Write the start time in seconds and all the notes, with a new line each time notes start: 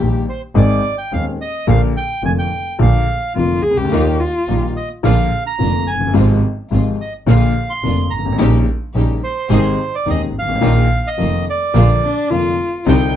Already playing: G4
0.00 A#1 A#2 D#3 G3 A#3 G4
0.29 C5
0.55 G#1 G#2 D#3 G#3 C4 G#4 D5
0.98 G5
1.12 D#1 D#2 D#3 G#3 C4 G#4 F5
1.41 D#5
1.67 A#1 A#2 D3 F3 A#3 F4 F5
1.97 G5
2.23 F1 F2 D3 F3 A#3 F4 G#5
2.39 G5
2.79 A#1 A#2 D3 F3 A#3 F4 F5
3.35 F1 F2 D3 F3 A#3 F4
3.63 C#2 G#4
3.71 C2
3.77 C#2 G4
3.85 D2
3.92 D#2 D#3 G3 A#3 D#4 F4
4.20 F4
4.48 A#1 A#2 D#3 G3 A#3 D#4 F4
4.77 D#5
5.03 A#1 A#2 D3 F3 A#3 D4 F4 F5
5.47 A#5
5.59 F1 F2 D3 F3 A#3 D4 F4
5.87 F#1 G#5
5.94 F1
6.00 F#1
6.07 G1
6.14 G#1 G#2 C3 F3 G#3 C4 F4
6.71 G#1 G#2 C3 F3 G#3 C4 F4
7.01 D#5
7.26 A#1 A#2 D3 F3 A#3 D4 F4 F5
7.70 C6
7.83 F1 F2 D3 F3 A#3 D4 F4
8.10 G#1 A#5
8.19 G1
8.26 G#1
8.32 A1
8.39 A#1 A#2 C#3 G3 A#3 C#4 D#4 G4
8.94 A#1 A#2 C#3 G3 A#3 C#4 D#4 G4
9.24 C5
9.50 G#1 G#2 C3 D#3 G#3 C4 D#4 G#4
9.95 D5
10.06 D#1 D#2 C3 D#3 G#3 C4 D#4 G#4
10.10 D#5
10.34 G#1
10.39 G1 F5
10.49 G#1
10.55 A1
10.61 A#1 A#2 D#3 F3 A#3 D#4 F4
11.07 D#5
11.18 F1 F2 D#3 F3 A#3 D#4 F4
11.50 D5
11.74 A#1 A#2 D3 F3 A#3 D4 F4
12.03 D4
12.30 F1 F2 D3 F3 A#3 D4 F4
12.86 C2 C3 D3 G3 C4 D4 D#4 G5